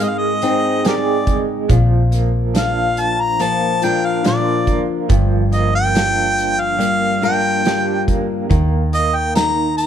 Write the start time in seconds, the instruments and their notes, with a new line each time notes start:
Already playing: steel-string acoustic guitar G#2 C4 D#4 G#4, fingered electric bass G#2, clean electric guitar D#3 C4
0.00 clean electric guitar G#3, steel-string acoustic guitar G#3, harmonica D#5
0.09 harmonica F5
0.18 harmonica D#5
0.42 clean electric guitar C4, steel-string acoustic guitar C4 D#4 G#4, closed hi-hat
0.84 clean electric guitar G#3 C4 G#4, harmonica G4 A#4 D5, snare, closed hi-hat
1.27 clean electric guitar G#3, kick, closed hi-hat
1.69 fingered electric bass A#1, steel-string acoustic guitar A#2, clean electric guitar F3, kick, closed hi-hat
2.11 clean electric guitar A#3, closed hi-hat
2.54 clean electric guitar D4, steel-string acoustic guitar F4, harmonica F5, snare, closed hi-hat
2.97 harmonica A5, closed hi-hat
3.21 harmonica A#5
3.40 steel-string acoustic guitar F3, clean electric guitar A#3, harmonica A5, closed hi-hat
3.82 clean electric guitar D4, steel-string acoustic guitar D4 F4 A#4, harmonica G5, closed hi-hat
4.06 harmonica F5
4.24 steel-string acoustic guitar A#2, clean electric guitar A#3 D4 F4, harmonica D5, snare, closed hi-hat
4.67 clean electric guitar A#3, kick, closed hi-hat
5.09 fingered electric bass G1, steel-string acoustic guitar G2, clean electric guitar F3, kick, closed hi-hat
5.52 clean electric guitar A#3, harmonica D#5, closed hi-hat
5.75 harmonica G5
5.95 clean electric guitar D4, steel-string acoustic guitar F4, snare, closed hi-hat
6.38 closed hi-hat
6.60 harmonica F5
6.78 steel-string acoustic guitar G3, clean electric guitar A#3, closed hi-hat
7.22 steel-string acoustic guitar A#3 F4 A#4, clean electric guitar D4, harmonica G5, closed hi-hat
7.65 clean electric guitar A#3 D4 G4, snare, closed hi-hat
8.08 clean electric guitar A#3, kick, closed hi-hat
8.49 fingered electric bass D#2, steel-string acoustic guitar D#3, clean electric guitar A#3, kick, closed hi-hat
8.93 clean electric guitar A#3, harmonica D#5, closed hi-hat
9.16 harmonica G5
9.35 clean electric guitar D#4, steel-string acoustic guitar D#4, harmonica A#5, snare, closed hi-hat
9.78 harmonica A#5, closed hi-hat